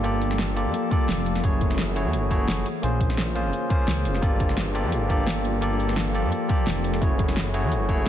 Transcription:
Already playing: ambient pad F3 A#3 A4, tine electric piano A#3 F4 G4 A4 D5
0.03 detuned saw bass G1, tine electric piano A#3 F4 G4 A4 D5, closed hi-hat, shaker
0.22 closed hi-hat
0.31 snare, shaker
0.39 snare, closed hi-hat, shaker
0.56 tine electric piano A#3 F4 G4 A4 D5, closed hi-hat
0.66 detuned saw bass G2
0.74 closed hi-hat, shaker
0.90 tine electric piano A#3 F4 G4 A4 D5, kick, closed hi-hat, shaker
1.09 detuned saw bass F1, snare, closed hi-hat, shaker
1.26 closed hi-hat
1.36 snare
1.43 detuned saw bass F#1, tine electric piano A3 E4 F#4 G#4 C#5, kick, closed hi-hat, shaker
1.61 kick, closed hi-hat
1.70 snare, shaker
1.79 snare, closed hi-hat, shaker
1.96 tine electric piano A3 E4 F#4 G#4 C#5, closed hi-hat
2.05 detuned saw bass F#2
2.13 detuned saw bass F#1, closed hi-hat, shaker
2.30 tine electric piano A3 E4 F#4 G#4 C#5, kick, closed hi-hat, shaker
2.48 snare, closed hi-hat, shaker
2.66 ambient pad C#3 G#4 C5, closed hi-hat
2.82 detuned saw bass A#1, tine electric piano A#3 C#4 F4 G#4 C5, closed hi-hat, shaker
3.01 kick, closed hi-hat
3.10 snare, shaker
3.18 snare, closed hi-hat, shaker
3.35 tine electric piano A#3 C#4 F4 G#4 C5, closed hi-hat
3.45 detuned saw bass F1
3.53 closed hi-hat, shaker
3.69 tine electric piano A#3 C#4 F4 G#4 C5, kick, closed hi-hat, shaker
3.80 shaker
3.88 detuned saw bass C#2, snare, closed hi-hat, shaker
4.05 detuned saw bass F1, closed hi-hat
4.14 snare
4.22 detuned saw bass G1, ambient pad F3 A#3 A4, tine electric piano A#3 F4 G4 A4 D5, kick, closed hi-hat, shaker
4.40 kick, closed hi-hat
4.49 snare, shaker
4.58 snare, closed hi-hat, shaker
4.75 tine electric piano A#3 F4 G4 A4 D5, closed hi-hat
4.84 detuned saw bass G2
4.92 detuned saw bass G1, closed hi-hat, shaker
5.09 tine electric piano A#3 F4 G4 A4 D5, kick, closed hi-hat, shaker
5.27 snare, closed hi-hat, shaker
5.45 closed hi-hat
5.61 detuned saw bass G1, tine electric piano A#3 F4 G4 A4 D5, closed hi-hat, shaker
5.80 closed hi-hat
5.89 snare, shaker
5.97 snare, closed hi-hat, shaker
6.14 tine electric piano A#3 F4 G4 A4 D5, closed hi-hat
6.24 detuned saw bass G2
6.32 closed hi-hat, shaker
6.48 tine electric piano A#3 F4 G4 A4 D5, kick, closed hi-hat, shaker
6.67 detuned saw bass F1, snare, closed hi-hat, shaker
6.84 closed hi-hat
6.94 snare
7.01 detuned saw bass F#1, tine electric piano A3 E4 F#4 G#4 C#5, kick, closed hi-hat, shaker
7.19 kick, closed hi-hat
7.29 snare, shaker
7.37 snare, closed hi-hat, shaker
7.53 tine electric piano A3 E4 F#4 G#4 C#5, closed hi-hat
7.63 detuned saw bass F#2
7.72 detuned saw bass F#1, closed hi-hat, shaker
7.89 tine electric piano A3 E4 F#4 G#4 C#5, kick, closed hi-hat, shaker

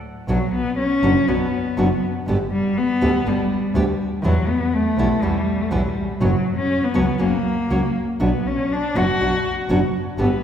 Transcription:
0.28 double bass B1, nylon-string guitar B2 F#3 B3 D4 F#4, cello F#3
0.54 cello B3
0.78 cello C#4
1.03 double bass F#1, nylon-string guitar B2 F#3 B3 D4 F#4
1.27 double bass B1, nylon-string guitar B2 F#3 B3 D4 F#4, cello B3
1.77 double bass F#1, nylon-string guitar B2 F#3 B3 D4 F#4
2.27 double bass G1, nylon-string guitar B2 D3 G3 B3 G4
2.52 cello G3
2.78 cello B3
3.01 double bass D2, nylon-string guitar B2 D3 G3 B3 G4
3.25 double bass G1, nylon-string guitar B2 D3 G3 B3 G4, cello G3
3.74 double bass D2, nylon-string guitar B2 D3 G3 B3 G4
4.23 double bass E2, nylon-string guitar B2 E3 G3 B3 E4, cello F#3
4.48 cello B3
4.74 cello A3
4.97 double bass B1, nylon-string guitar B2 E3 G3 B3 E4
5.21 double bass E2, nylon-string guitar B2 E3 G3 B3 E4, cello G3
5.61 cello A3
5.69 double bass B1, nylon-string guitar B2 E3 G3 B3 E4, cello G3
5.79 cello F#3
5.89 cello G3
6.21 double bass F#1, nylon-string guitar B2 F#3 B3 C#4 F#4, cello F#3
6.56 cello C#4
6.84 cello B3
6.94 double bass C#2, nylon-string guitar B2 F#3 B3 C#4 F#4
7.18 double bass F#1, nylon-string guitar C#3 F#3 A#3 C#4 F#4, cello A#3
7.70 double bass C#2, nylon-string guitar C#3 F#3 A#3 C#4 F#4
8.20 double bass B1, nylon-string guitar B2 F#3 B3 D4 F#4, cello B3
8.47 cello C#4
8.73 cello D4
8.95 double bass F#1, nylon-string guitar B2 F#3 B3 D4 F#4, cello F#4
9.20 double bass B1, nylon-string guitar B2 F#3 B3 D4 F#4
9.69 double bass F#1, nylon-string guitar B2 F#3 B3 D4 F#4
10.18 double bass G1, nylon-string guitar B2 D3 G3 B3 G4, cello B3

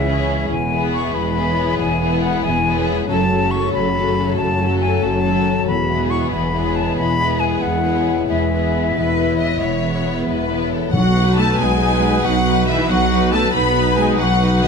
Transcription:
Already playing: double bass section C#2, cello section C#3, harp C#3 G#3 C#4 E4, trombone section E3 G#3, french horn section C#4 E4, flute E5
0.06 viola section C#4, violin section E4 G#4
0.28 harp C#4
0.48 double bass section E1, cello section E2, harp E2, trombone section E3 G#3, french horn section B3 E4, flute G#5
0.70 harp B2, viola section B3, violin section E4 G#4
0.92 harp E4, flute C#6
1.14 double bass section E1, cello section E2, harp B2, flute B5
1.35 harp C#3, viola section B3, violin section E4 G#4
1.58 harp B2
1.78 double bass section E1, cello section E2, harp E2, flute G#5
2.00 harp G#3, viola section B3, violin section E4 G#4
2.22 harp E4, flute F#5
2.43 double bass section E1, cello section E2, harp B2, flute G#5
2.65 harp C#3, viola section B3, violin section E4 G#4
2.87 harp B2
3.07 double bass section F#1, cello section F#2, harp F#2, trombone section C#3 A3, viola section F#3, french horn section C#4 F#4, violin section C#4 A4, flute A5
3.29 harp C#3, viola section F#3, violin section C#4 A4
3.51 harp C#4, flute C#6
3.73 double bass section F#1, cello section F#2, harp C#3, flute B5
3.94 harp D#3, viola section F#3, violin section C#4 A4
4.17 harp C#3
4.37 double bass section F#1, cello section F#2, harp F#2, flute A5
4.58 viola section F#3, harp F#3, violin section C#4 A4
4.80 harp C#4, flute G#5
5.02 double bass section F#1, cello section F#2, harp C#3, flute A5
5.24 harp D#3, viola section F#3, violin section C#4 A4
5.46 harp C#3
5.66 double bass section E1, cello section E2, harp E2, trombone section E3 G#3, french horn section B3, flute B5
5.88 harp B2, viola section B3, violin section E4 G#4
6.10 harp E4, flute C#6
6.32 double bass section E1, cello section E2, harp B2, french horn section E4, flute B5
6.53 harp C#3, viola section B3, violin section E4 G#4
6.75 harp B2, flute A5
6.96 double bass section E1, cello section E2, harp E2, flute B5
7.18 viola section B3, harp B3, violin section E4 G#4
7.40 harp E4, flute G#5
7.62 double bass section E1, cello section E2, harp B2, flute F#5
7.84 harp C#3, viola section B3, violin section E4 G#4
8.06 harp B2
8.28 double bass section E1, cello section E2, harp E2, viola section B3, violin section E4 G#4, flute E5
8.50 harp B2, viola section B3, violin section E4 G#4
8.73 harp E4
8.95 double bass section E1, cello section E2, harp B2, violin section B4
9.17 harp C#3, viola section B3, violin section E4
9.40 harp B2, violin section D#5
9.61 double bass section E1, harp E2, cello section E2, violin section C#5
9.83 viola section B3, harp B3, violin section E4
10.27 double bass section E1, cello section E2, harp B2, violin section B4
10.49 harp C#3, viola section B3, violin section E4
10.72 harp B2, violin section A4
10.92 tuba B1, double bass section B1, trombone section B2 B3, timpani B2, harp B2, cello section F#3, french horn section D#4 F#4, trumpet section F#4, flute F#5, violin section F#5
11.05 harp F#3
11.15 harp B3, viola section D#4 B4
11.26 harp D#4
11.36 cello section A3, harp F#4, trumpet section A4, violin section A5, flute A5
11.49 harp B4
11.58 tuba B1, double bass section B1, cello section G#3, trumpet section G#4, harp D#5, violin section G#5, flute G#5
11.70 harp F#5
11.80 viola section D#4 B4, harp D#5
12.02 harp D#5
12.23 tuba B1, double bass section B1, trombone section B2 B3, cello section F#3, french horn section D#4 F#4, trumpet section F#4, harp D#5, violin section F#5, flute F#5
12.35 harp F#5
12.46 viola section D#4 B4, harp D#5
12.57 harp B4
12.67 cello section E3, trumpet section E4, harp F#4, violin section E5, flute E5
12.79 harp D#4
12.87 tuba B1, double bass section B1, trombone section B2 B3, cello section F#3, french horn section D#4 F#4, trumpet section F#4, violin section F#5, flute F#5
13.00 harp F#3
13.11 harp B3, viola section D#4 B4
13.22 harp F#3
13.32 cello section A3, harp B3, trumpet section A4, violin section A5, flute A5
13.44 harp F#3
13.52 tuba B1, double bass section B1, trombone section B2 B3, harp B2, cello section B3, french horn section D#4 F#4, trumpet section B4, violin section B5, flute B5
13.64 harp B3
13.74 harp F#3, viola section D#4 B4
13.87 harp D#4
13.97 cello section G#3, trumpet section G#4, violin section G#5, flute G#5
14.09 harp B4
14.17 tuba B1, double bass section B1, trombone section B2 B3, cello section F#3, french horn section D#4 F#4, trumpet section F#4, harp D#5, violin section F#5, flute F#5
14.29 harp F#5
14.41 viola section D#4 B4, harp D#5
14.52 harp F#5
14.62 cello section D#3, trumpet section D#4, harp D#5, violin section D#5, flute D#5

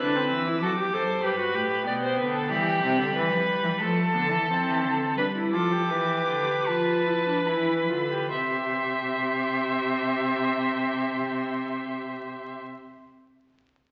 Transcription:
0.00 cello D3, viola D4, violin B4 F#6
0.15 viola C4
0.31 cello E3, violin E6
0.47 viola E4
0.61 cello F#3, viola F#4, violin A4 D6
0.78 viola G4
0.92 cello F#2, viola A4, violin C5
1.23 cello G2, viola G4, violin B4 B5
1.39 viola F#4
1.55 cello A2, viola G4
1.86 cello B2, viola B3, violin D5 G5
2.03 violin C5
2.18 cello D3, violin B4
2.34 violin A4
2.50 cello E3, viola G3, violin G4 B5
2.82 cello C3
2.98 cello D3
3.14 cello E3, violin B4
3.30 cello F3
3.63 cello E3
3.80 cello F3, viola A3, violin A4 A5
4.14 cello D3, viola B3
4.31 cello E3
4.48 cello F3, viola C4
4.65 cello E3
4.82 cello D3
5.17 cello G3, viola D4, violin B4 B5
5.36 viola E4
5.53 cello F3, viola F4, violin A4 D6
5.72 viola G4
5.90 cello E3, violin B4
6.28 cello D3
6.66 cello F3, viola F4, violin A5
7.06 viola E4
7.26 viola D4
7.47 cello E3, viola E4, violin B5
7.89 cello D3, viola F4
8.11 viola G4
8.31 cello C3, viola G4, violin E5 C6

